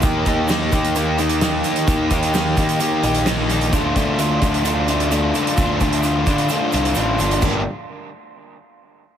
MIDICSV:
0, 0, Header, 1, 5, 480
1, 0, Start_track
1, 0, Key_signature, -2, "minor"
1, 0, Tempo, 461538
1, 36, Time_signature, 4, 2, 24, 8
1, 9539, End_track
2, 0, Start_track
2, 0, Title_t, "Overdriven electric guitar"
2, 0, Program_c, 0, 29
2, 7725, Note_on_c, 0, 67, 105
2, 7914, Note_off_c, 0, 67, 0
2, 9539, End_track
3, 0, Start_track
3, 0, Title_t, "Overdriven electric guitar"
3, 0, Program_c, 1, 29
3, 34, Note_on_c, 1, 51, 93
3, 41, Note_on_c, 1, 58, 99
3, 45, Note_on_c, 1, 63, 91
3, 49, Note_on_c, 1, 67, 91
3, 273, Note_off_c, 1, 51, 0
3, 277, Note_on_c, 1, 51, 72
3, 278, Note_off_c, 1, 58, 0
3, 280, Note_off_c, 1, 63, 0
3, 282, Note_on_c, 1, 58, 91
3, 284, Note_on_c, 1, 63, 83
3, 288, Note_off_c, 1, 67, 0
3, 292, Note_on_c, 1, 67, 95
3, 508, Note_off_c, 1, 51, 0
3, 512, Note_off_c, 1, 58, 0
3, 512, Note_on_c, 1, 51, 91
3, 516, Note_on_c, 1, 58, 98
3, 518, Note_off_c, 1, 63, 0
3, 522, Note_on_c, 1, 63, 100
3, 524, Note_off_c, 1, 67, 0
3, 529, Note_on_c, 1, 67, 101
3, 748, Note_off_c, 1, 51, 0
3, 752, Note_on_c, 1, 51, 82
3, 756, Note_off_c, 1, 58, 0
3, 760, Note_on_c, 1, 58, 83
3, 761, Note_off_c, 1, 63, 0
3, 765, Note_on_c, 1, 63, 93
3, 766, Note_off_c, 1, 67, 0
3, 770, Note_on_c, 1, 67, 89
3, 974, Note_off_c, 1, 51, 0
3, 985, Note_off_c, 1, 58, 0
3, 986, Note_on_c, 1, 51, 100
3, 988, Note_off_c, 1, 63, 0
3, 995, Note_off_c, 1, 67, 0
3, 998, Note_on_c, 1, 58, 90
3, 1001, Note_on_c, 1, 63, 102
3, 1008, Note_on_c, 1, 67, 102
3, 1221, Note_off_c, 1, 51, 0
3, 1230, Note_off_c, 1, 58, 0
3, 1233, Note_on_c, 1, 51, 84
3, 1235, Note_off_c, 1, 63, 0
3, 1242, Note_off_c, 1, 67, 0
3, 1243, Note_on_c, 1, 58, 78
3, 1248, Note_on_c, 1, 63, 80
3, 1255, Note_on_c, 1, 67, 86
3, 1471, Note_off_c, 1, 51, 0
3, 1475, Note_off_c, 1, 58, 0
3, 1482, Note_off_c, 1, 63, 0
3, 1483, Note_off_c, 1, 67, 0
3, 1484, Note_on_c, 1, 51, 97
3, 1487, Note_on_c, 1, 58, 97
3, 1494, Note_on_c, 1, 63, 98
3, 1495, Note_on_c, 1, 67, 100
3, 1705, Note_off_c, 1, 51, 0
3, 1713, Note_off_c, 1, 58, 0
3, 1716, Note_off_c, 1, 63, 0
3, 1717, Note_on_c, 1, 51, 84
3, 1721, Note_off_c, 1, 67, 0
3, 1725, Note_on_c, 1, 58, 93
3, 1728, Note_on_c, 1, 63, 89
3, 1733, Note_on_c, 1, 67, 88
3, 1943, Note_off_c, 1, 51, 0
3, 1945, Note_off_c, 1, 58, 0
3, 1952, Note_off_c, 1, 63, 0
3, 1953, Note_off_c, 1, 67, 0
3, 1955, Note_on_c, 1, 51, 87
3, 1958, Note_on_c, 1, 58, 93
3, 1965, Note_on_c, 1, 63, 88
3, 1966, Note_on_c, 1, 67, 100
3, 2186, Note_off_c, 1, 51, 0
3, 2189, Note_off_c, 1, 58, 0
3, 2198, Note_off_c, 1, 63, 0
3, 2198, Note_on_c, 1, 51, 73
3, 2199, Note_off_c, 1, 67, 0
3, 2201, Note_on_c, 1, 58, 90
3, 2210, Note_on_c, 1, 63, 92
3, 2212, Note_on_c, 1, 67, 79
3, 2425, Note_off_c, 1, 51, 0
3, 2431, Note_off_c, 1, 58, 0
3, 2436, Note_off_c, 1, 63, 0
3, 2437, Note_on_c, 1, 51, 103
3, 2443, Note_off_c, 1, 67, 0
3, 2443, Note_on_c, 1, 58, 105
3, 2449, Note_on_c, 1, 63, 102
3, 2455, Note_on_c, 1, 67, 101
3, 2668, Note_off_c, 1, 51, 0
3, 2674, Note_off_c, 1, 58, 0
3, 2676, Note_off_c, 1, 63, 0
3, 2681, Note_off_c, 1, 67, 0
3, 2681, Note_on_c, 1, 51, 83
3, 2686, Note_on_c, 1, 58, 95
3, 2689, Note_on_c, 1, 63, 85
3, 2693, Note_on_c, 1, 67, 98
3, 2909, Note_off_c, 1, 51, 0
3, 2910, Note_off_c, 1, 58, 0
3, 2918, Note_off_c, 1, 63, 0
3, 2921, Note_off_c, 1, 67, 0
3, 2922, Note_on_c, 1, 51, 99
3, 2922, Note_on_c, 1, 58, 108
3, 2930, Note_on_c, 1, 63, 116
3, 2934, Note_on_c, 1, 67, 113
3, 3141, Note_off_c, 1, 51, 0
3, 3146, Note_off_c, 1, 58, 0
3, 3152, Note_off_c, 1, 63, 0
3, 3154, Note_on_c, 1, 51, 84
3, 3158, Note_off_c, 1, 67, 0
3, 3159, Note_on_c, 1, 58, 77
3, 3165, Note_on_c, 1, 63, 83
3, 3170, Note_on_c, 1, 67, 87
3, 3378, Note_off_c, 1, 51, 0
3, 3385, Note_off_c, 1, 58, 0
3, 3390, Note_off_c, 1, 63, 0
3, 3390, Note_on_c, 1, 51, 98
3, 3395, Note_off_c, 1, 67, 0
3, 3398, Note_on_c, 1, 58, 105
3, 3403, Note_on_c, 1, 63, 112
3, 3407, Note_on_c, 1, 67, 110
3, 3628, Note_off_c, 1, 51, 0
3, 3632, Note_off_c, 1, 58, 0
3, 3640, Note_off_c, 1, 63, 0
3, 3640, Note_on_c, 1, 51, 73
3, 3645, Note_off_c, 1, 67, 0
3, 3645, Note_on_c, 1, 58, 74
3, 3652, Note_on_c, 1, 63, 90
3, 3658, Note_on_c, 1, 67, 82
3, 3867, Note_off_c, 1, 51, 0
3, 3869, Note_off_c, 1, 58, 0
3, 3873, Note_off_c, 1, 63, 0
3, 3875, Note_off_c, 1, 67, 0
3, 3877, Note_on_c, 1, 50, 85
3, 3883, Note_on_c, 1, 57, 107
3, 3887, Note_on_c, 1, 62, 98
3, 3891, Note_on_c, 1, 65, 100
3, 4106, Note_off_c, 1, 50, 0
3, 4110, Note_on_c, 1, 50, 82
3, 4112, Note_off_c, 1, 57, 0
3, 4116, Note_on_c, 1, 57, 79
3, 4118, Note_off_c, 1, 62, 0
3, 4120, Note_off_c, 1, 65, 0
3, 4122, Note_on_c, 1, 62, 90
3, 4124, Note_on_c, 1, 65, 90
3, 4348, Note_off_c, 1, 50, 0
3, 4353, Note_on_c, 1, 50, 88
3, 4355, Note_off_c, 1, 57, 0
3, 4359, Note_on_c, 1, 57, 95
3, 4360, Note_off_c, 1, 62, 0
3, 4364, Note_on_c, 1, 62, 101
3, 4366, Note_off_c, 1, 65, 0
3, 4370, Note_on_c, 1, 65, 118
3, 4587, Note_off_c, 1, 50, 0
3, 4591, Note_on_c, 1, 50, 82
3, 4592, Note_off_c, 1, 57, 0
3, 4596, Note_on_c, 1, 57, 91
3, 4598, Note_off_c, 1, 62, 0
3, 4602, Note_off_c, 1, 65, 0
3, 4602, Note_on_c, 1, 62, 83
3, 4606, Note_on_c, 1, 65, 104
3, 4813, Note_off_c, 1, 50, 0
3, 4819, Note_off_c, 1, 57, 0
3, 4826, Note_on_c, 1, 50, 98
3, 4829, Note_off_c, 1, 65, 0
3, 4832, Note_on_c, 1, 57, 112
3, 4834, Note_off_c, 1, 62, 0
3, 4839, Note_on_c, 1, 62, 99
3, 4841, Note_on_c, 1, 65, 102
3, 5063, Note_off_c, 1, 50, 0
3, 5064, Note_off_c, 1, 57, 0
3, 5074, Note_off_c, 1, 65, 0
3, 5076, Note_on_c, 1, 50, 70
3, 5077, Note_on_c, 1, 57, 81
3, 5081, Note_off_c, 1, 62, 0
3, 5086, Note_on_c, 1, 62, 88
3, 5087, Note_on_c, 1, 65, 90
3, 5297, Note_off_c, 1, 50, 0
3, 5302, Note_off_c, 1, 57, 0
3, 5310, Note_on_c, 1, 50, 89
3, 5312, Note_off_c, 1, 65, 0
3, 5313, Note_off_c, 1, 62, 0
3, 5315, Note_on_c, 1, 57, 94
3, 5317, Note_on_c, 1, 62, 107
3, 5324, Note_on_c, 1, 65, 116
3, 5535, Note_off_c, 1, 50, 0
3, 5545, Note_off_c, 1, 57, 0
3, 5547, Note_on_c, 1, 50, 81
3, 5550, Note_off_c, 1, 65, 0
3, 5557, Note_off_c, 1, 62, 0
3, 5558, Note_on_c, 1, 57, 87
3, 5561, Note_on_c, 1, 62, 94
3, 5563, Note_on_c, 1, 65, 96
3, 5783, Note_off_c, 1, 50, 0
3, 5786, Note_off_c, 1, 57, 0
3, 5795, Note_on_c, 1, 50, 89
3, 5796, Note_off_c, 1, 62, 0
3, 5797, Note_off_c, 1, 65, 0
3, 5799, Note_on_c, 1, 57, 92
3, 5808, Note_on_c, 1, 62, 88
3, 5809, Note_on_c, 1, 65, 106
3, 6019, Note_off_c, 1, 50, 0
3, 6027, Note_off_c, 1, 57, 0
3, 6031, Note_off_c, 1, 62, 0
3, 6031, Note_on_c, 1, 50, 87
3, 6037, Note_off_c, 1, 65, 0
3, 6040, Note_on_c, 1, 57, 75
3, 6043, Note_on_c, 1, 62, 83
3, 6050, Note_on_c, 1, 65, 102
3, 6263, Note_off_c, 1, 50, 0
3, 6269, Note_off_c, 1, 57, 0
3, 6274, Note_off_c, 1, 62, 0
3, 6275, Note_on_c, 1, 50, 96
3, 6281, Note_on_c, 1, 57, 114
3, 6282, Note_off_c, 1, 65, 0
3, 6286, Note_on_c, 1, 62, 109
3, 6294, Note_on_c, 1, 65, 109
3, 6506, Note_off_c, 1, 50, 0
3, 6512, Note_off_c, 1, 57, 0
3, 6519, Note_on_c, 1, 50, 93
3, 6520, Note_off_c, 1, 62, 0
3, 6521, Note_off_c, 1, 65, 0
3, 6524, Note_on_c, 1, 57, 88
3, 6532, Note_on_c, 1, 62, 99
3, 6533, Note_on_c, 1, 65, 97
3, 6750, Note_off_c, 1, 50, 0
3, 6757, Note_off_c, 1, 57, 0
3, 6761, Note_off_c, 1, 62, 0
3, 6762, Note_on_c, 1, 50, 108
3, 6767, Note_off_c, 1, 65, 0
3, 6770, Note_on_c, 1, 57, 105
3, 6773, Note_on_c, 1, 62, 112
3, 6780, Note_on_c, 1, 65, 121
3, 6983, Note_off_c, 1, 50, 0
3, 6992, Note_off_c, 1, 57, 0
3, 6994, Note_off_c, 1, 62, 0
3, 6996, Note_on_c, 1, 50, 89
3, 7000, Note_off_c, 1, 65, 0
3, 7004, Note_on_c, 1, 57, 79
3, 7006, Note_on_c, 1, 62, 86
3, 7013, Note_on_c, 1, 65, 87
3, 7220, Note_off_c, 1, 50, 0
3, 7229, Note_off_c, 1, 57, 0
3, 7232, Note_on_c, 1, 50, 99
3, 7237, Note_off_c, 1, 62, 0
3, 7240, Note_off_c, 1, 65, 0
3, 7241, Note_on_c, 1, 57, 96
3, 7250, Note_on_c, 1, 62, 99
3, 7252, Note_on_c, 1, 65, 104
3, 7466, Note_off_c, 1, 50, 0
3, 7474, Note_off_c, 1, 57, 0
3, 7478, Note_off_c, 1, 62, 0
3, 7478, Note_on_c, 1, 50, 82
3, 7483, Note_off_c, 1, 65, 0
3, 7486, Note_on_c, 1, 57, 87
3, 7491, Note_on_c, 1, 62, 90
3, 7496, Note_on_c, 1, 65, 90
3, 7704, Note_off_c, 1, 50, 0
3, 7708, Note_off_c, 1, 57, 0
3, 7711, Note_off_c, 1, 62, 0
3, 7713, Note_off_c, 1, 65, 0
3, 7717, Note_on_c, 1, 43, 89
3, 7725, Note_on_c, 1, 50, 88
3, 7727, Note_on_c, 1, 55, 98
3, 7728, Note_on_c, 1, 58, 93
3, 7733, Note_on_c, 1, 62, 91
3, 7736, Note_on_c, 1, 70, 103
3, 7910, Note_off_c, 1, 43, 0
3, 7914, Note_off_c, 1, 50, 0
3, 7915, Note_off_c, 1, 55, 0
3, 7915, Note_off_c, 1, 58, 0
3, 7918, Note_off_c, 1, 62, 0
3, 7920, Note_off_c, 1, 70, 0
3, 9539, End_track
4, 0, Start_track
4, 0, Title_t, "Picked electric bass"
4, 0, Program_c, 2, 34
4, 35, Note_on_c, 2, 39, 92
4, 256, Note_off_c, 2, 39, 0
4, 270, Note_on_c, 2, 39, 80
4, 715, Note_off_c, 2, 39, 0
4, 753, Note_on_c, 2, 39, 87
4, 1675, Note_off_c, 2, 39, 0
4, 1950, Note_on_c, 2, 39, 91
4, 2175, Note_off_c, 2, 39, 0
4, 2190, Note_on_c, 2, 39, 88
4, 2636, Note_off_c, 2, 39, 0
4, 2676, Note_on_c, 2, 51, 84
4, 2898, Note_off_c, 2, 51, 0
4, 3152, Note_on_c, 2, 34, 88
4, 3836, Note_off_c, 2, 34, 0
4, 3872, Note_on_c, 2, 38, 98
4, 4097, Note_off_c, 2, 38, 0
4, 4117, Note_on_c, 2, 38, 83
4, 4560, Note_off_c, 2, 38, 0
4, 4595, Note_on_c, 2, 38, 85
4, 5516, Note_off_c, 2, 38, 0
4, 5801, Note_on_c, 2, 38, 96
4, 6021, Note_off_c, 2, 38, 0
4, 6039, Note_on_c, 2, 38, 105
4, 6481, Note_off_c, 2, 38, 0
4, 6517, Note_on_c, 2, 50, 93
4, 6739, Note_off_c, 2, 50, 0
4, 7006, Note_on_c, 2, 36, 86
4, 7219, Note_off_c, 2, 36, 0
4, 7241, Note_on_c, 2, 33, 90
4, 7456, Note_off_c, 2, 33, 0
4, 7476, Note_on_c, 2, 31, 84
4, 7693, Note_off_c, 2, 31, 0
4, 7721, Note_on_c, 2, 31, 94
4, 7943, Note_off_c, 2, 31, 0
4, 9539, End_track
5, 0, Start_track
5, 0, Title_t, "Drums"
5, 22, Note_on_c, 9, 82, 104
5, 34, Note_on_c, 9, 36, 112
5, 36, Note_on_c, 9, 42, 62
5, 126, Note_off_c, 9, 82, 0
5, 138, Note_off_c, 9, 36, 0
5, 140, Note_off_c, 9, 42, 0
5, 268, Note_on_c, 9, 82, 68
5, 271, Note_on_c, 9, 42, 69
5, 273, Note_on_c, 9, 36, 78
5, 372, Note_off_c, 9, 82, 0
5, 375, Note_off_c, 9, 42, 0
5, 377, Note_off_c, 9, 36, 0
5, 504, Note_on_c, 9, 82, 95
5, 518, Note_on_c, 9, 42, 73
5, 521, Note_on_c, 9, 38, 107
5, 608, Note_off_c, 9, 82, 0
5, 622, Note_off_c, 9, 42, 0
5, 625, Note_off_c, 9, 38, 0
5, 749, Note_on_c, 9, 82, 81
5, 753, Note_on_c, 9, 36, 80
5, 755, Note_on_c, 9, 42, 67
5, 853, Note_off_c, 9, 82, 0
5, 857, Note_off_c, 9, 36, 0
5, 859, Note_off_c, 9, 42, 0
5, 878, Note_on_c, 9, 42, 64
5, 982, Note_off_c, 9, 42, 0
5, 994, Note_on_c, 9, 42, 68
5, 994, Note_on_c, 9, 82, 97
5, 1098, Note_off_c, 9, 42, 0
5, 1098, Note_off_c, 9, 82, 0
5, 1230, Note_on_c, 9, 42, 70
5, 1231, Note_on_c, 9, 82, 77
5, 1334, Note_off_c, 9, 42, 0
5, 1335, Note_off_c, 9, 82, 0
5, 1345, Note_on_c, 9, 42, 69
5, 1449, Note_off_c, 9, 42, 0
5, 1468, Note_on_c, 9, 42, 69
5, 1471, Note_on_c, 9, 38, 120
5, 1474, Note_on_c, 9, 82, 96
5, 1572, Note_off_c, 9, 42, 0
5, 1575, Note_off_c, 9, 38, 0
5, 1578, Note_off_c, 9, 82, 0
5, 1705, Note_on_c, 9, 42, 65
5, 1707, Note_on_c, 9, 82, 67
5, 1809, Note_off_c, 9, 42, 0
5, 1811, Note_off_c, 9, 82, 0
5, 1827, Note_on_c, 9, 42, 64
5, 1931, Note_off_c, 9, 42, 0
5, 1952, Note_on_c, 9, 36, 110
5, 1952, Note_on_c, 9, 42, 64
5, 1952, Note_on_c, 9, 82, 86
5, 2056, Note_off_c, 9, 36, 0
5, 2056, Note_off_c, 9, 42, 0
5, 2056, Note_off_c, 9, 82, 0
5, 2189, Note_on_c, 9, 42, 62
5, 2193, Note_on_c, 9, 36, 81
5, 2193, Note_on_c, 9, 82, 71
5, 2293, Note_off_c, 9, 42, 0
5, 2297, Note_off_c, 9, 36, 0
5, 2297, Note_off_c, 9, 82, 0
5, 2314, Note_on_c, 9, 42, 64
5, 2418, Note_off_c, 9, 42, 0
5, 2432, Note_on_c, 9, 82, 91
5, 2439, Note_on_c, 9, 42, 65
5, 2442, Note_on_c, 9, 38, 101
5, 2536, Note_off_c, 9, 82, 0
5, 2543, Note_off_c, 9, 42, 0
5, 2546, Note_off_c, 9, 38, 0
5, 2671, Note_on_c, 9, 82, 63
5, 2676, Note_on_c, 9, 36, 88
5, 2678, Note_on_c, 9, 42, 68
5, 2775, Note_off_c, 9, 82, 0
5, 2780, Note_off_c, 9, 36, 0
5, 2782, Note_off_c, 9, 42, 0
5, 2795, Note_on_c, 9, 42, 68
5, 2899, Note_off_c, 9, 42, 0
5, 2911, Note_on_c, 9, 82, 92
5, 2914, Note_on_c, 9, 42, 69
5, 3015, Note_off_c, 9, 82, 0
5, 3018, Note_off_c, 9, 42, 0
5, 3154, Note_on_c, 9, 42, 72
5, 3156, Note_on_c, 9, 82, 65
5, 3258, Note_off_c, 9, 42, 0
5, 3260, Note_off_c, 9, 82, 0
5, 3269, Note_on_c, 9, 42, 73
5, 3373, Note_off_c, 9, 42, 0
5, 3388, Note_on_c, 9, 42, 75
5, 3391, Note_on_c, 9, 38, 120
5, 3400, Note_on_c, 9, 82, 89
5, 3492, Note_off_c, 9, 42, 0
5, 3495, Note_off_c, 9, 38, 0
5, 3504, Note_off_c, 9, 82, 0
5, 3633, Note_on_c, 9, 42, 74
5, 3642, Note_on_c, 9, 82, 66
5, 3737, Note_off_c, 9, 42, 0
5, 3746, Note_off_c, 9, 82, 0
5, 3755, Note_on_c, 9, 42, 71
5, 3859, Note_off_c, 9, 42, 0
5, 3875, Note_on_c, 9, 42, 66
5, 3877, Note_on_c, 9, 36, 104
5, 3882, Note_on_c, 9, 82, 94
5, 3979, Note_off_c, 9, 42, 0
5, 3981, Note_off_c, 9, 36, 0
5, 3986, Note_off_c, 9, 82, 0
5, 4115, Note_on_c, 9, 42, 77
5, 4117, Note_on_c, 9, 36, 81
5, 4122, Note_on_c, 9, 82, 61
5, 4219, Note_off_c, 9, 42, 0
5, 4221, Note_off_c, 9, 36, 0
5, 4226, Note_off_c, 9, 82, 0
5, 4353, Note_on_c, 9, 42, 77
5, 4361, Note_on_c, 9, 82, 90
5, 4457, Note_off_c, 9, 42, 0
5, 4465, Note_off_c, 9, 82, 0
5, 4592, Note_on_c, 9, 42, 75
5, 4597, Note_on_c, 9, 36, 78
5, 4604, Note_on_c, 9, 82, 68
5, 4696, Note_off_c, 9, 42, 0
5, 4701, Note_off_c, 9, 36, 0
5, 4708, Note_off_c, 9, 82, 0
5, 4721, Note_on_c, 9, 42, 72
5, 4825, Note_off_c, 9, 42, 0
5, 4838, Note_on_c, 9, 82, 85
5, 4840, Note_on_c, 9, 42, 75
5, 4942, Note_off_c, 9, 82, 0
5, 4944, Note_off_c, 9, 42, 0
5, 5075, Note_on_c, 9, 42, 75
5, 5076, Note_on_c, 9, 82, 64
5, 5179, Note_off_c, 9, 42, 0
5, 5180, Note_off_c, 9, 82, 0
5, 5201, Note_on_c, 9, 42, 72
5, 5305, Note_off_c, 9, 42, 0
5, 5320, Note_on_c, 9, 42, 76
5, 5320, Note_on_c, 9, 82, 96
5, 5424, Note_off_c, 9, 42, 0
5, 5424, Note_off_c, 9, 82, 0
5, 5558, Note_on_c, 9, 82, 66
5, 5563, Note_on_c, 9, 42, 63
5, 5662, Note_off_c, 9, 82, 0
5, 5667, Note_off_c, 9, 42, 0
5, 5688, Note_on_c, 9, 42, 68
5, 5792, Note_off_c, 9, 42, 0
5, 5796, Note_on_c, 9, 82, 93
5, 5800, Note_on_c, 9, 36, 107
5, 5800, Note_on_c, 9, 42, 65
5, 5900, Note_off_c, 9, 82, 0
5, 5904, Note_off_c, 9, 36, 0
5, 5904, Note_off_c, 9, 42, 0
5, 6036, Note_on_c, 9, 82, 71
5, 6037, Note_on_c, 9, 42, 65
5, 6040, Note_on_c, 9, 36, 81
5, 6140, Note_off_c, 9, 82, 0
5, 6141, Note_off_c, 9, 42, 0
5, 6144, Note_off_c, 9, 36, 0
5, 6161, Note_on_c, 9, 42, 64
5, 6265, Note_off_c, 9, 42, 0
5, 6271, Note_on_c, 9, 82, 80
5, 6279, Note_on_c, 9, 42, 68
5, 6375, Note_off_c, 9, 82, 0
5, 6383, Note_off_c, 9, 42, 0
5, 6517, Note_on_c, 9, 82, 67
5, 6518, Note_on_c, 9, 42, 68
5, 6519, Note_on_c, 9, 36, 90
5, 6621, Note_off_c, 9, 82, 0
5, 6622, Note_off_c, 9, 42, 0
5, 6623, Note_off_c, 9, 36, 0
5, 6636, Note_on_c, 9, 42, 67
5, 6740, Note_off_c, 9, 42, 0
5, 6750, Note_on_c, 9, 82, 96
5, 6764, Note_on_c, 9, 42, 75
5, 6854, Note_off_c, 9, 82, 0
5, 6868, Note_off_c, 9, 42, 0
5, 6992, Note_on_c, 9, 82, 71
5, 7002, Note_on_c, 9, 42, 72
5, 7096, Note_off_c, 9, 82, 0
5, 7106, Note_off_c, 9, 42, 0
5, 7125, Note_on_c, 9, 42, 75
5, 7225, Note_on_c, 9, 82, 108
5, 7229, Note_off_c, 9, 42, 0
5, 7242, Note_on_c, 9, 42, 82
5, 7329, Note_off_c, 9, 82, 0
5, 7346, Note_off_c, 9, 42, 0
5, 7474, Note_on_c, 9, 82, 69
5, 7485, Note_on_c, 9, 42, 66
5, 7578, Note_off_c, 9, 82, 0
5, 7589, Note_off_c, 9, 42, 0
5, 7603, Note_on_c, 9, 42, 74
5, 7707, Note_off_c, 9, 42, 0
5, 7714, Note_on_c, 9, 82, 82
5, 7721, Note_on_c, 9, 36, 105
5, 7723, Note_on_c, 9, 49, 86
5, 7818, Note_off_c, 9, 82, 0
5, 7825, Note_off_c, 9, 36, 0
5, 7827, Note_off_c, 9, 49, 0
5, 9539, End_track
0, 0, End_of_file